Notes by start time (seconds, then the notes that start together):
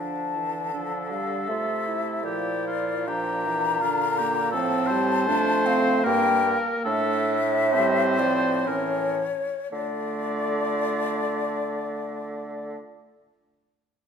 Already playing: D3 F3 D4 A5
0.35 E3
0.74 F3 D4 A4
1.10 G3 F5
1.48 C3 A3 F4 E5
1.87 E4
2.23 A#2 F3 G4 D5
2.67 F4
3.07 F3 D4 G4 A#5
3.47 E3
3.81 D3 D4 F4
4.18 A#3 G4
4.51 A2 F3 C4 A4 A5
4.87 G3 C5
5.28 F2 A3 D4
5.66 C4 F5
6.04 G2 A#3 A#4 G5
6.44 A#3
6.84 A2 A3 D4 A4 E5
7.72 G3 C4 C5
8.19 F3 D5
8.65 A2 E3 C#4 A#4 C#5
9.72 D3 A3 F4 D5